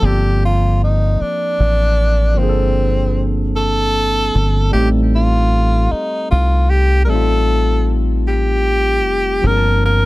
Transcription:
0.00 G1 F3 A#3 C4
0.05 G4 A4 D5
0.45 F4
0.84 D#4
1.21 D4, muted fingered electric bass stroke
1.60 A1
2.34 G1 F3 A#3 C4
2.39 C4 D4
2.43 G#4
2.49 A4
3.56 A4
4.35 G1
4.71 A1 G3 A3 G4
4.76 C4 D#4
4.80 A4
5.15 F4
5.91 D#4
6.31 C2 F4
6.70 G4
7.05 G3 A3 A#4
7.09 A1 C4 D#4 A4
7.15 F4
8.27 G4
9.05 F1
9.41 G1 F3 A#3
9.46 C4 D4 A#4
9.50 G#4
9.57 A5
9.85 A#4

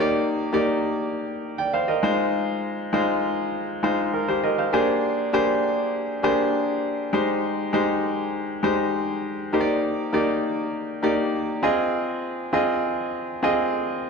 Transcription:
Already playing: A#3 D#4 G4
0.00 D5
0.53 A#3 D#4 G4 D5
1.58 D5 G5
1.73 C5 F5
1.88 A#4 D#5
2.03 G#3 D#4 F4 C5
2.93 G#3 D#4 F4 C5
3.83 G#3 D#4 F4 C5
4.13 F4 A#4
4.28 G4 C5
4.43 A#4 D#5
4.58 C5 F5
4.73 A#3 D4 G4 G#4 C5
5.33 A#3 D4 G4 G#4 C5
6.23 A#3 D4 G4 G#4 C5
7.13 G#3 D#4 G4 C5
7.73 G#3 D#4 G4 C5
8.63 G#3 D#4 G4 C5
9.53 A#3 D#4 G4 C5
9.60 D5
10.13 A#3 D#4 G4 D5
11.02 A#3 D#4 G4 D5
11.63 C4 F4 G#4 D#5
12.53 C4 F4 G#4 D#5
13.43 C4 F4 G#4 D#5

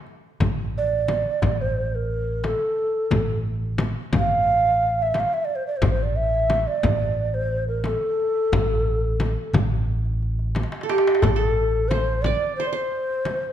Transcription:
0.06 darbuka ka
0.40 A1, darbuka dum, frame drum
0.78 D5
1.08 darbuka tek, frame drum
1.42 A1, darbuka dum, frame drum
1.61 C5
1.94 A#4, darbuka ka
2.27 darbuka ka
2.44 A4, darbuka tek, frame drum
2.61 darbuka ka
2.78 darbuka ka
3.11 A1, frame drum, darbuka dum
3.78 darbuka tek, frame drum
4.13 A1, frame drum, darbuka dum
4.17 F5
4.65 darbuka ka
4.99 E5, darbuka ka
5.14 darbuka tek, frame drum
5.19 F5
5.33 E5, darbuka ka
5.45 D5
5.49 darbuka ka
5.55 C5
5.67 D5
5.76 C5
5.82 A1, frame drum, darbuka dum
5.89 C5
6.03 D5
6.16 E5
6.50 darbuka tek, frame drum
6.67 D5
6.83 A1, frame drum, darbuka dum
7.34 C5, darbuka ka
7.68 A#4, darbuka ka
7.84 A4 A#4, darbuka tek, frame drum
8.03 darbuka ka
8.20 darbuka ka
8.52 A1, frame drum, darbuka dum
8.88 darbuka ka
9.20 darbuka tek, frame drum
9.53 A1, darbuka dum, frame drum
10.05 darbuka ka
10.22 darbuka ka
10.39 darbuka ka
10.55 darbuka tek, frame drum
10.63 darbuka ka
10.72 darbuka tek
10.81 A4, darbuka ka
10.89 G4, darbuka tek
10.98 darbuka ka
11.07 darbuka tek
11.15 darbuka ka
11.22 A1 A4, darbuka dum, frame drum
11.31 G4
11.36 A4
11.88 C5, darbuka tek, frame drum
12.22 D5, frame drum
12.56 C5
12.60 C5
12.67 D5
12.73 C5
12.92 darbuka ka
13.10 darbuka ka
13.25 darbuka tek, frame drum
13.44 darbuka ka

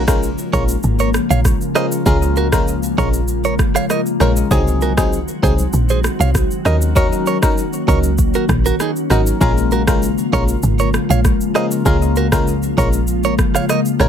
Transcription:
Already playing: A#1 C#3 F3 G#3 A#3 F4
0.07 G#3 C#4 F4 A#4, kick, cross-stick, shaker
0.23 shaker
0.38 shaker
0.53 A#1 G#3 C#4 F4 A#4 C#5, kick, shaker
0.69 shaker
0.83 G#1, shaker
0.99 A#4 C#5, shaker
1.14 cross-stick, shaker
1.30 A#1 C#5 F5, shaker
1.45 kick, cross-stick, shaker
1.61 shaker
1.75 G#3 C#4 F4 A#4 C5 D#5, cross-stick, shaker
1.92 shaker
2.06 C#2 G#3 A#3 C#4 F4 G#4 A#4, kick, shaker
2.23 shaker
2.36 F#4 A#4, shaker
2.52 G#3 C#4 F4 A#4, kick, cross-stick, shaker
2.68 shaker
2.83 shaker
2.98 A#1 G#3 C#4 F4 A#4 C#5, kick, shaker
3.13 shaker
3.28 shaker
3.44 A#4 C#5, shaker
3.59 G#1, kick, cross-stick, shaker
3.75 C#5 F5, cross-stick, shaker
3.90 A#4 D#5, cross-stick, shaker
4.06 shaker
4.20 A#1 G#3 C#4 F4 A#4 C#5, cross-stick, shaker
4.37 shaker
4.51 C2 D#3 F#3 C4 D#4 F#4 G#4, kick, shaker
4.68 shaker
4.81 F#4 A#4, shaker
4.97 F#3 C4 D#4 G#4, kick, cross-stick, shaker
5.13 shaker
5.28 shaker
5.42 C2 F#3 C4 D#4 G#4 C5, kick, shaker
5.59 shaker
5.73 A#1, shaker
5.89 G#4 C5, shaker
6.04 cross-stick, shaker
6.20 C2 C#5 F5, shaker
6.35 kick, cross-stick, shaker
6.51 shaker
6.65 D#2 F#3 A#3 C#4 D#4 A#4 D#5, cross-stick, shaker
6.82 shaker
6.96 F#3 C#4 D#4 A#4 C#5, kick, shaker
7.13 shaker
7.26 A#4 C#5, shaker
7.42 F#3 C#4 D#4 A#4, kick, cross-stick, shaker
7.58 shaker
7.73 shaker
7.87 C#2 F#3 C#4 D#4 A#4 C#5, kick, shaker
8.03 shaker
8.18 kick, shaker
8.34 F#4 A#4, shaker
8.49 A#1, kick, cross-stick, shaker
8.66 F#4 A#4, shaker
8.80 D#4 G#4, cross-stick, shaker
8.96 shaker
9.10 G#1 F#3 C#4 D#4 F#4 A#4, cross-stick, shaker
9.27 shaker
9.41 A#1 C#3 F3 G#3 C#4 F4 G#4 A#4, kick, shaker
9.58 shaker
9.71 F#4 A#4, shaker
9.87 G#3 C#4 F4 A#4, kick, cross-stick, shaker
10.03 shaker
10.18 shaker
10.33 A#1 G#3 C#4 F4 A#4 C#5, kick, shaker
10.48 shaker
10.63 G#1, shaker
10.79 A#4 C#5, shaker
10.94 cross-stick, shaker
11.10 A#1 C#5 F5, shaker
11.25 kick, cross-stick, shaker
11.41 shaker
11.55 G#3 C#4 F4 A#4 C5 D#5, cross-stick, shaker
11.71 shaker
11.85 C#2 F3 G#3 C#4 F4 G#4 A#4, kick, shaker
12.02 shaker
12.16 F#4 A#4, shaker
12.32 G#3 C#4 F4 A#4, kick, cross-stick, shaker
12.47 shaker
12.63 shaker
12.77 A#1 G#3 C#4 F4 A#4 C#5, kick, shaker
12.93 shaker
13.07 shaker
13.24 A#4 C#5, shaker
13.38 G#1, kick, cross-stick, shaker
13.55 C#5 F5, cross-stick, shaker
13.69 A#4 D#5, cross-stick, shaker
13.86 shaker
14.00 A#1 G#3 C#4 F4 A#4 C#5, cross-stick, shaker

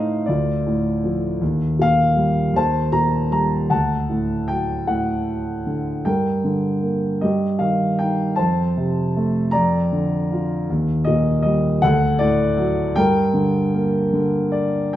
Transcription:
Already playing: A2 A3 D#4 C5 D#5 F5
0.26 D2 F4 D5
0.67 A2
1.04 F3
1.41 D#2
1.79 A#2 F5
2.16 G3
2.54 D#2 C5 A5
2.92 A#2 A#5
3.31 G3 A#5
3.70 D2 F#5 A5
4.09 A2
4.48 F#3 G5
4.87 A2 F#5
5.66 D3
6.05 G2 A#4 G5
6.44 D3
6.83 A#3
7.21 G2 G4 D#5
7.59 D#3 F5
7.99 D#4 G5
8.36 F2 C5 A5
8.77 C3
9.17 A3
9.51 F2 D5 A#5
9.92 D3
10.32 F4
10.70 D#2
11.05 A#2 D#5
11.42 G3 D#5
11.82 D2 A4 F#5
12.19 A2 D5
12.57 F#3
12.96 G2 A#4 G5
13.34 D3
13.74 A#3
14.13 D3
14.52 D5

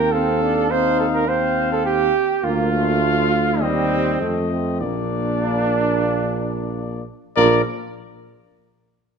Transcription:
Already playing: D#2 A#3 C4 A#4 G5
0.12 C4 A4 F5
0.42 D4
0.71 C4 D#4 C5 F5
1.00 A4
1.14 A#4
1.28 C4 C5 F5
1.72 A4
1.85 G4
2.43 D2 A#3 F4 F5
2.73 A3
3.02 A3
3.61 D#2 G3 C4 D#5
4.21 F2 A3 D#5
4.52 C4
4.82 A#1 A#3 D4 D5
7.36 A#1 F3 A#3 A#4 D5

